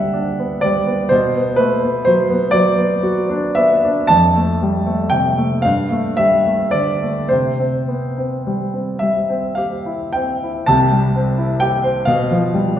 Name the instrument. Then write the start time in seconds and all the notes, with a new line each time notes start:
grand piano
Already playing: G2 D3 F#3 G3 E5 F#5 G5
0.13 D4
0.39 B3
0.61 G3 D5
0.86 B3
1.09 B2 C5
1.36 B3
1.56 A3 B4
1.83 B3
2.05 F#3 C5
2.30 B3
2.51 F#3 D5
2.77 B3
3.03 F#4
3.30 D4
3.55 B3 E5
3.85 D4
4.07 F2 A5
4.36 A3
4.62 G3
4.86 A3
5.10 C3 G5
5.38 A3
5.62 G2 F5
5.91 A3
6.17 G3 E5
6.46 A3
6.71 D3 D5
7.02 A3
7.29 C3 C5
7.60 C4
7.88 B3
8.18 C4
8.47 G3
8.74 C4
8.99 G3 E5
9.30 C4
9.55 G4 F5
9.86 E4
10.13 C4 G5
10.44 E4
10.66 C2 C3 A5
10.92 G3
11.16 C4
11.38 E4
11.60 G4 G5
11.84 C5
12.05 B2 F5
12.31 F3
12.54 G3